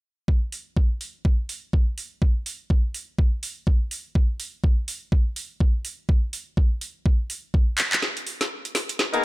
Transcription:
0.28 kick
0.52 open hi-hat
0.77 kick
1.01 open hi-hat
1.25 kick
1.49 open hi-hat
1.73 kick
1.98 open hi-hat
2.22 kick
2.46 open hi-hat
2.70 kick
2.94 open hi-hat
3.19 kick
3.43 open hi-hat
3.67 kick
3.91 open hi-hat
4.15 kick
4.40 open hi-hat
4.64 kick
4.88 open hi-hat
5.12 kick
5.36 open hi-hat
5.60 kick
5.85 open hi-hat
6.09 kick
6.33 open hi-hat
6.57 kick
6.81 open hi-hat
7.06 kick
7.30 open hi-hat
7.54 kick
7.78 clap, open hi-hat
7.93 clap
8.02 snare
8.17 closed hi-hat
8.27 open hi-hat
8.41 snare, closed hi-hat
8.65 closed hi-hat
8.75 snare, open hi-hat
8.89 closed hi-hat
8.99 snare
9.13 A#3 B3 D#4 G#4 A#4, closed hi-hat

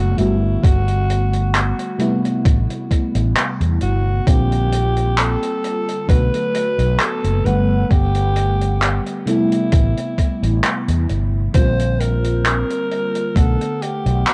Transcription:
Already playing: F#1 D3 F#3 A3 B3 F#4
0.17 G1 D3 G3 A3 B3 E4 F#4, closed hi-hat
0.63 G1 F#4, kick, closed hi-hat
0.88 closed hi-hat
1.10 closed hi-hat
1.33 closed hi-hat
1.54 clap, closed hi-hat
1.79 closed hi-hat
1.98 C3 G3 A3 B3 E4, closed hi-hat
2.25 closed hi-hat
2.45 A1, kick, closed hi-hat
2.70 closed hi-hat
2.91 kick, closed hi-hat
3.15 A1, closed hi-hat
3.37 clap, closed hi-hat
3.61 E2, closed hi-hat
3.81 G1 F#4, closed hi-hat
4.25 A#1 D3 G3 A#3 C4 F4 G4, kick, closed hi-hat
4.52 closed hi-hat
4.72 closed hi-hat
4.97 closed hi-hat
5.18 A4, clap, closed hi-hat
5.43 closed hi-hat
5.64 closed hi-hat
5.89 closed hi-hat
6.07 B1 D3 F#3 A3 B3 F#4 B4, kick, closed hi-hat
6.34 closed hi-hat
6.55 closed hi-hat
6.79 B1, closed hi-hat
7.00 A4, clap, closed hi-hat
7.24 F#1, closed hi-hat
7.44 G1 D3 G3 A3 B3 B4 F#5, closed hi-hat
7.90 G1 G4, kick, closed hi-hat
8.15 closed hi-hat
8.36 closed hi-hat
8.61 closed hi-hat
8.82 clap, closed hi-hat
9.06 closed hi-hat
9.26 C3 G3 A3 B3 E4, closed hi-hat
9.52 closed hi-hat
9.72 A1, kick, closed hi-hat
9.97 closed hi-hat
10.18 kick, closed hi-hat
10.43 A1, closed hi-hat
10.63 clap, closed hi-hat
10.88 E2, closed hi-hat
11.09 G1, closed hi-hat
11.53 A#1 D3 G3 A#3 C4 F4 C5, kick, closed hi-hat
11.79 closed hi-hat
12.00 A#4, closed hi-hat
12.24 closed hi-hat
12.45 A#4, clap, closed hi-hat
12.70 closed hi-hat
12.91 closed hi-hat
13.15 closed hi-hat
13.35 B1 D3 A3 B3 A4 F#5, kick, closed hi-hat
13.61 closed hi-hat
13.82 G4, closed hi-hat
14.06 B1, closed hi-hat
14.27 F#4, clap, closed hi-hat

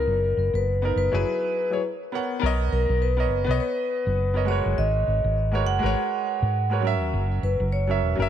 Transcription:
Already playing: B3 D#4 A#4
0.07 F#1
0.37 F#1
0.53 F#1 B4
0.82 B3 D#4 A#4
0.96 F#1 B4
1.12 F#1 F#3 E4 G#4 B4
1.70 F#3 E4 G#4 C#5
2.12 B3 A#4 C#5 F#5
2.39 B1 B3 A#4
2.44 C#5 D#5
2.72 B1 A#4
2.89 B1
3.02 B4
3.17 B3 A#4 C#5 D#5
3.31 F#1
3.44 B1 B3 B4
3.49 C#5 D#5
3.54 C#5
3.60 B4
4.07 F#1
4.34 B3 A#4 C#5 D#5
4.45 G#3 F#4 A#4 C#5
4.50 B4 C#5
4.66 F#1
4.78 G#1 D#5
5.07 G#1
5.24 G#1
5.52 G#3 F#4 A#4 B4 C#5
5.66 F#1 F#5
5.79 G#3 F#4 A#4
5.84 G#1 B4 C#5
6.42 G#2
6.70 G#3 F#4 A#4 B4 C#5
6.80 F#3 C#4
6.85 A#4 E5
7.01 D#2
7.13 F#1
7.43 F#1 B4
7.60 F#1
7.72 C#5
7.87 F#3 C#4 A#4 E5
8.02 E1
8.15 F#1 F#3 C#4
8.20 A#4 E5

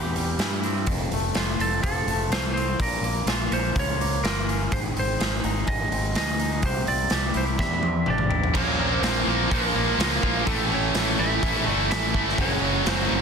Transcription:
Already playing: E2 C3 E3 G3 C4 E4 G4
0.15 G3, open hi-hat
0.38 G2 E4, snare, open hi-hat
0.63 C4, open hi-hat
0.86 F1 F2, kick, open hi-hat
1.11 F1 A3, open hi-hat
1.34 F1 F4, snare, open hi-hat
1.59 F1 C4 A4, open hi-hat
1.83 F1 F3 A4, kick, open hi-hat
2.06 F1 A3, open hi-hat
2.30 C2 F4 C5, snare, open hi-hat
2.54 C4 C5, open hi-hat
2.79 A#1 A#2 A#4, kick, open hi-hat
3.01 A#1 A#3, open hi-hat
3.26 A#1 F4, snare, open hi-hat
3.51 A#1 C#4 C5, open hi-hat
3.76 C#2 F3 C#5, kick, open hi-hat
4.00 A#3, open hi-hat
4.23 G1 F4 A#4, snare, open hi-hat
4.47 C#4, open hi-hat
4.71 G#1 G#2 C5, kick, open hi-hat
4.96 G#1 C4 C5, open hi-hat
5.19 G#4, snare, open hi-hat
5.44 G#1 D#4, open hi-hat
5.66 G#1 G#3 D#5, kick, open hi-hat
5.91 G#1 C4, open hi-hat
6.15 D2 G#4 D#5, snare, open hi-hat
6.39 D#4, open hi-hat
6.62 C2 C3 C5, kick, open hi-hat
6.86 C2 C4 D5, open hi-hat
7.10 C2 G4, snare, open hi-hat
7.34 C2 E4 C5, open hi-hat
7.58 E2 G3 E5, kick, snare
7.83 C4, high tom
8.06 A1 D4 G4 D5, mid tom
8.18 mid tom
8.29 E4, floor tom
8.44 floor tom
8.54 A#1 A#2 F3 A#3 C#4 C#5, kick, crash
8.79 A#1 A#2 F3 A#3
8.92 C5
9.01 A#1 A#2 F3 A#3 C4 C5, snare, open hi-hat
9.26 A#1 A#2 F3 A#3
9.50 A#1 A#2 F3 A#3 C#4, kick, open hi-hat
9.54 A#4
9.74 A#1 A#2 F3 A#3
9.98 C#2 A#2 F3 A#3 C#4 A#4, snare, open hi-hat
10.22 A#1 A#2 F3 A#3 F4, kick
10.45 A1 A2 E3 A3 A4, kick, open hi-hat
10.69 A2 E3 A3 C#4
10.74 C#5
10.94 A1 A2 E3 A3 C#4, snare, open hi-hat
11.17 A1 A2 E3 A3 E4 E5
11.42 A1 A2 E3 A3 C#4, kick, open hi-hat
11.65 G1 A2 E3 A3
11.70 D5
11.89 A1 A2 E3 A3 C#4 E4 E5, snare, open hi-hat
12.12 G1 A2 E3 A3 E4, kick
12.29 snare
12.38 F#1 F#2 C#3 F#3 C#4 C#5, kick, open hi-hat
12.62 F#1 F#2 C#3 F#3
12.86 F#1 F#2 C#3 F#3 C4 C5, snare, open hi-hat
13.08 F#1 F#2 C#3 F#3

